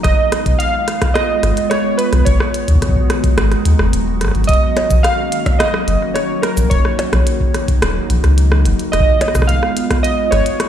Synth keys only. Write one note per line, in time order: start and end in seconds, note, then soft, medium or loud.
0.03 0.61 D#5 loud
0.59 1.11 F5 loud
1.14 1.72 D#5 loud
1.70 1.99 C#5 medium
1.97 2.27 B4 medium
2.25 3.33 C#5 medium
4.47 5.05 D#5 loud
5.03 5.61 F5 loud
5.59 6.17 D#5 loud
6.14 6.41 C#5 medium
6.42 6.71 A#4 medium
6.70 7.78 C#5 medium
8.92 9.44 D#5 loud
9.47 10.00 F5 loud
10.03 10.32 D#5 loud
10.31 10.69 C#5 loud